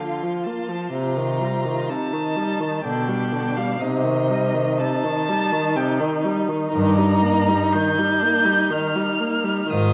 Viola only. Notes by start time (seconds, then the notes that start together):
0.00 D3
0.23 F3
0.46 A#3
0.69 F3
0.92 C3
1.17 D#3
1.40 G3
1.65 D#3
1.90 C3
2.13 D#3
2.36 G3
2.60 D#3
2.85 D3
3.08 G3
3.32 D3
3.57 G3
3.79 C3
4.04 D#3
4.30 G3
4.54 D#3
4.80 C3
5.04 D#3
5.29 G3
5.52 D#3
5.76 C3
6.00 D#3
6.25 G3
6.48 D#3
6.72 D#3
6.97 G3
7.22 A#3
7.49 G3
7.74 D#3
7.98 G3
8.22 A#3
8.45 G3
8.70 D#3
8.95 G3
9.20 A#3
9.44 G3
9.69 D#3